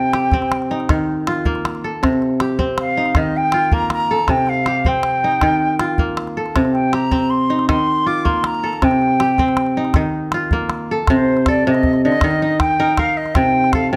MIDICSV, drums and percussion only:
0, 0, Header, 1, 2, 480
1, 0, Start_track
1, 0, Tempo, 377596
1, 2578, Time_signature, 12, 3, 24, 8
1, 17748, End_track
2, 0, Start_track
2, 0, Title_t, "Calabash"
2, 171, Note_on_c, 9, 38, 62
2, 298, Note_off_c, 9, 38, 0
2, 402, Note_on_c, 9, 36, 63
2, 402, Note_on_c, 9, 38, 20
2, 529, Note_off_c, 9, 36, 0
2, 529, Note_off_c, 9, 38, 0
2, 536, Note_on_c, 9, 38, 21
2, 656, Note_off_c, 9, 38, 0
2, 656, Note_on_c, 9, 38, 63
2, 783, Note_off_c, 9, 38, 0
2, 789, Note_on_c, 9, 38, 20
2, 916, Note_off_c, 9, 38, 0
2, 1018, Note_on_c, 9, 38, 20
2, 1135, Note_off_c, 9, 38, 0
2, 1135, Note_on_c, 9, 36, 69
2, 1135, Note_on_c, 9, 38, 70
2, 1262, Note_off_c, 9, 36, 0
2, 1262, Note_off_c, 9, 38, 0
2, 1618, Note_on_c, 9, 38, 66
2, 1745, Note_off_c, 9, 38, 0
2, 1847, Note_on_c, 9, 36, 64
2, 1847, Note_on_c, 9, 38, 20
2, 1974, Note_off_c, 9, 38, 0
2, 1974, Note_on_c, 9, 38, 20
2, 1975, Note_off_c, 9, 36, 0
2, 2099, Note_off_c, 9, 38, 0
2, 2099, Note_on_c, 9, 38, 64
2, 2223, Note_off_c, 9, 38, 0
2, 2223, Note_on_c, 9, 38, 21
2, 2350, Note_off_c, 9, 38, 0
2, 2355, Note_on_c, 9, 38, 18
2, 2482, Note_off_c, 9, 38, 0
2, 2587, Note_on_c, 9, 36, 63
2, 2587, Note_on_c, 9, 38, 63
2, 2706, Note_off_c, 9, 38, 0
2, 2706, Note_on_c, 9, 38, 19
2, 2714, Note_off_c, 9, 36, 0
2, 2823, Note_off_c, 9, 38, 0
2, 2823, Note_on_c, 9, 38, 19
2, 2950, Note_off_c, 9, 38, 0
2, 3052, Note_on_c, 9, 38, 64
2, 3180, Note_off_c, 9, 38, 0
2, 3288, Note_on_c, 9, 36, 57
2, 3415, Note_off_c, 9, 36, 0
2, 3530, Note_on_c, 9, 38, 62
2, 3657, Note_off_c, 9, 38, 0
2, 3885, Note_on_c, 9, 38, 21
2, 4001, Note_off_c, 9, 38, 0
2, 4001, Note_on_c, 9, 36, 67
2, 4001, Note_on_c, 9, 38, 64
2, 4129, Note_off_c, 9, 36, 0
2, 4129, Note_off_c, 9, 38, 0
2, 4476, Note_on_c, 9, 38, 63
2, 4603, Note_off_c, 9, 38, 0
2, 4725, Note_on_c, 9, 36, 63
2, 4852, Note_off_c, 9, 36, 0
2, 4960, Note_on_c, 9, 38, 62
2, 5087, Note_off_c, 9, 38, 0
2, 5087, Note_on_c, 9, 38, 20
2, 5214, Note_off_c, 9, 38, 0
2, 5317, Note_on_c, 9, 38, 20
2, 5438, Note_off_c, 9, 38, 0
2, 5438, Note_on_c, 9, 36, 59
2, 5438, Note_on_c, 9, 38, 63
2, 5559, Note_off_c, 9, 38, 0
2, 5559, Note_on_c, 9, 38, 19
2, 5565, Note_off_c, 9, 36, 0
2, 5681, Note_off_c, 9, 38, 0
2, 5681, Note_on_c, 9, 38, 18
2, 5808, Note_off_c, 9, 38, 0
2, 5924, Note_on_c, 9, 38, 58
2, 6051, Note_off_c, 9, 38, 0
2, 6162, Note_on_c, 9, 36, 54
2, 6290, Note_off_c, 9, 36, 0
2, 6396, Note_on_c, 9, 38, 56
2, 6523, Note_off_c, 9, 38, 0
2, 6760, Note_on_c, 9, 38, 19
2, 6883, Note_off_c, 9, 38, 0
2, 6883, Note_on_c, 9, 36, 60
2, 6883, Note_on_c, 9, 38, 62
2, 7010, Note_off_c, 9, 36, 0
2, 7010, Note_off_c, 9, 38, 0
2, 7366, Note_on_c, 9, 38, 58
2, 7494, Note_off_c, 9, 38, 0
2, 7603, Note_on_c, 9, 36, 59
2, 7730, Note_off_c, 9, 36, 0
2, 7845, Note_on_c, 9, 38, 58
2, 7973, Note_off_c, 9, 38, 0
2, 7975, Note_on_c, 9, 38, 20
2, 8102, Note_off_c, 9, 38, 0
2, 8209, Note_on_c, 9, 38, 19
2, 8334, Note_off_c, 9, 38, 0
2, 8334, Note_on_c, 9, 36, 58
2, 8334, Note_on_c, 9, 38, 58
2, 8452, Note_off_c, 9, 38, 0
2, 8452, Note_on_c, 9, 38, 19
2, 8461, Note_off_c, 9, 36, 0
2, 8579, Note_off_c, 9, 38, 0
2, 8580, Note_on_c, 9, 38, 17
2, 8707, Note_off_c, 9, 38, 0
2, 8810, Note_on_c, 9, 38, 61
2, 8937, Note_off_c, 9, 38, 0
2, 9042, Note_on_c, 9, 36, 58
2, 9170, Note_off_c, 9, 36, 0
2, 9649, Note_on_c, 9, 38, 19
2, 9774, Note_off_c, 9, 38, 0
2, 9774, Note_on_c, 9, 36, 60
2, 9774, Note_on_c, 9, 38, 60
2, 9901, Note_off_c, 9, 36, 0
2, 9901, Note_off_c, 9, 38, 0
2, 10498, Note_on_c, 9, 36, 59
2, 10625, Note_off_c, 9, 36, 0
2, 10728, Note_on_c, 9, 38, 58
2, 10855, Note_off_c, 9, 38, 0
2, 10864, Note_on_c, 9, 38, 19
2, 10991, Note_off_c, 9, 38, 0
2, 11099, Note_on_c, 9, 38, 18
2, 11214, Note_off_c, 9, 38, 0
2, 11214, Note_on_c, 9, 36, 61
2, 11214, Note_on_c, 9, 38, 57
2, 11329, Note_off_c, 9, 38, 0
2, 11329, Note_on_c, 9, 38, 19
2, 11342, Note_off_c, 9, 36, 0
2, 11456, Note_off_c, 9, 38, 0
2, 11462, Note_on_c, 9, 38, 19
2, 11589, Note_off_c, 9, 38, 0
2, 11695, Note_on_c, 9, 38, 58
2, 11823, Note_off_c, 9, 38, 0
2, 11927, Note_on_c, 9, 36, 54
2, 11927, Note_on_c, 9, 38, 17
2, 12054, Note_off_c, 9, 36, 0
2, 12054, Note_off_c, 9, 38, 0
2, 12055, Note_on_c, 9, 38, 19
2, 12163, Note_off_c, 9, 38, 0
2, 12163, Note_on_c, 9, 38, 57
2, 12286, Note_off_c, 9, 38, 0
2, 12286, Note_on_c, 9, 38, 19
2, 12413, Note_off_c, 9, 38, 0
2, 12517, Note_on_c, 9, 38, 18
2, 12634, Note_off_c, 9, 38, 0
2, 12634, Note_on_c, 9, 36, 61
2, 12634, Note_on_c, 9, 38, 59
2, 12761, Note_off_c, 9, 36, 0
2, 12761, Note_off_c, 9, 38, 0
2, 13116, Note_on_c, 9, 38, 58
2, 13243, Note_off_c, 9, 38, 0
2, 13358, Note_on_c, 9, 36, 58
2, 13485, Note_off_c, 9, 36, 0
2, 13596, Note_on_c, 9, 38, 56
2, 13723, Note_off_c, 9, 38, 0
2, 14078, Note_on_c, 9, 36, 64
2, 14078, Note_on_c, 9, 38, 61
2, 14205, Note_off_c, 9, 36, 0
2, 14205, Note_off_c, 9, 38, 0
2, 14450, Note_on_c, 9, 38, 20
2, 14568, Note_off_c, 9, 38, 0
2, 14568, Note_on_c, 9, 36, 64
2, 14568, Note_on_c, 9, 38, 63
2, 14695, Note_off_c, 9, 36, 0
2, 14695, Note_off_c, 9, 38, 0
2, 14931, Note_on_c, 9, 38, 19
2, 15042, Note_on_c, 9, 36, 64
2, 15058, Note_off_c, 9, 38, 0
2, 15168, Note_on_c, 9, 38, 18
2, 15169, Note_off_c, 9, 36, 0
2, 15295, Note_off_c, 9, 38, 0
2, 15408, Note_on_c, 9, 38, 19
2, 15524, Note_off_c, 9, 38, 0
2, 15524, Note_on_c, 9, 36, 61
2, 15524, Note_on_c, 9, 38, 66
2, 15648, Note_off_c, 9, 38, 0
2, 15648, Note_on_c, 9, 38, 18
2, 15651, Note_off_c, 9, 36, 0
2, 15775, Note_off_c, 9, 38, 0
2, 16014, Note_on_c, 9, 36, 59
2, 16014, Note_on_c, 9, 38, 66
2, 16141, Note_off_c, 9, 36, 0
2, 16141, Note_off_c, 9, 38, 0
2, 16493, Note_on_c, 9, 36, 64
2, 16493, Note_on_c, 9, 38, 65
2, 16621, Note_off_c, 9, 36, 0
2, 16621, Note_off_c, 9, 38, 0
2, 16852, Note_on_c, 9, 38, 20
2, 16972, Note_off_c, 9, 38, 0
2, 16972, Note_on_c, 9, 36, 65
2, 16972, Note_on_c, 9, 38, 62
2, 17099, Note_off_c, 9, 36, 0
2, 17099, Note_off_c, 9, 38, 0
2, 17341, Note_on_c, 9, 38, 20
2, 17452, Note_off_c, 9, 38, 0
2, 17452, Note_on_c, 9, 36, 65
2, 17452, Note_on_c, 9, 38, 66
2, 17580, Note_off_c, 9, 36, 0
2, 17580, Note_off_c, 9, 38, 0
2, 17748, End_track
0, 0, End_of_file